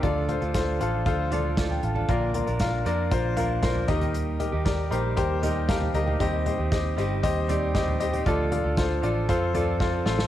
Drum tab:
HH |x-xxx-x-x-x-x-x-|x-xxx-x-x-x-x-xx|x-x-x-x-x-x-x-x-|x-x-x-x-x-x-x-xx|
SD |----o-------o---|----o-------o---|----o-------o---|----o-------o---|
FT |--o-------o--o-o|--o-------o--o-o|--o-------o--o-o|--o-------o--o-o|
BD |o---o---o---o---|o---o---o---o-o-|----o---o---o---|o---o---o---o---|

HH |x-x-x-x-x-x-----|
SD |----o-------o-oo|
FT |--o-------o-----|
BD |o---o---o---o---|